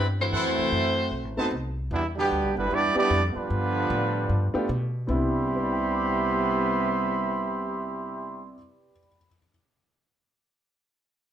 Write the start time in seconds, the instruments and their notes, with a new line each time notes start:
Already playing: upright bass G2
0.19 trombone section E3 A3 C4, saxophone section A3 E4 F#4 C5
0.33 upright bass F#2, trumpet section E4 A4 C5 F#5
0.46 upright bass E2
0.59 upright bass C2
0.72 upright bass F#2
1.11 upright bass B1
1.25 upright bass A1
1.37 upright bass F#1, upright piano A3 B3 C4 D#4 F#4, trumpet section D#4 B4 C5 A5
1.51 upright bass C2
1.91 upright bass E2, trombone section G2 B2 E3, trumpet section G3 B3 D4 E4
2.16 trombone section B2 D3 G3, trumpet section B3 D4 G4
2.32 upright bass D2
2.44 upright bass B1
2.54 upright bass G1, trombone section D3 G3 B3, trumpet section G3 E4 B4
2.58 trumpet section D4
2.68 upright bass E2, trombone section G3 B3 D4, trumpet section B3 E4 G4 D5
2.95 upright piano G3 B3 D4 E4 G4, trombone section G3 B3 D4, trumpet section B3 E4 G4 D5, muted upright bass stroke
3.10 upright bass F2
3.33 trombone section D3 F3 B3, trumpet section G3 D4 F4 B4, muted upright bass stroke
3.50 upright bass G2
3.90 upright bass A2
4.29 upright bass G2
4.54 upright piano A3 B3 D4 F4 G4, muted upright bass stroke
4.69 upright bass B2
5.07 upright bass C2, trombone section C3 G3 B3 E4, upright piano C3 G3 B3 D4 E4, trumpet section G4 E5 B5 C6
5.48 upright piano G4
5.55 upright piano B4
5.64 upright piano D5
5.72 upright piano G5
5.83 upright piano B5
5.94 upright piano D6
6.06 upright piano G6